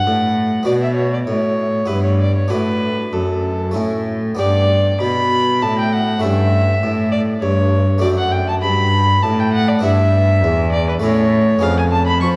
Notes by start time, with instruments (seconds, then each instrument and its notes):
Already playing: harpsichord D4 F#4, violin F#5
0.07 cello A2, harpsichord A2
0.63 harpsichord B2 B3 F#4, violin D5
0.67 cello B2
0.82 violin E5
0.95 violin C#5
1.13 violin D5
1.26 harpsichord A2, cello A2, violin C#5
1.86 harpsichord G2 B3 E4, cello G2, violin B4
2.03 violin C#5
2.21 violin D5
2.36 violin C#5
2.48 harpsichord A2 D4 F#4, cello A2, violin B4
3.13 harpsichord F#2, cello F#2, violin A4
3.71 harpsichord A3 C#4 E4
3.76 harpsichord A2, cello A2
4.35 harpsichord B3 D4 G4, violin D5
4.39 cello G2, harpsichord G2
5.00 harpsichord B2, cello B2, violin B5
5.62 cello A2, harpsichord A2, violin A5
5.79 violin G5
5.92 violin F#5
6.20 cello G2, harpsichord A3 C#4 E4, violin E5
6.24 harpsichord G2
6.82 cello A2, harpsichord A2
7.12 violin D5
7.40 harpsichord G2, cello G2, violin C#5
7.98 cello F#2, harpsichord A3 D4 F#4, violin D5
8.03 harpsichord F#2
8.18 violin F#5
8.32 violin G5
8.48 violin A5
8.63 cello G2, harpsichord G2, violin B5
9.23 harpsichord A2, cello A2, violin A5
9.40 violin G5
9.53 violin F#5
9.69 violin D5
9.79 harpsichord B3 D4 E4
9.83 cello G2, harpsichord G2, violin E5
10.43 cello E2, harpsichord E2
10.72 violin D5
10.89 violin B4
11.00 cello A2, harpsichord A3 C#4 E4, violin C#5
11.04 harpsichord A2
11.59 cello F2, harpsichord B3 C#4 G#4, violin F5
11.63 harpsichord F2
11.79 violin G#5
11.92 violin A5
12.07 violin B5
12.20 cello F3, harpsichord F3, violin C#6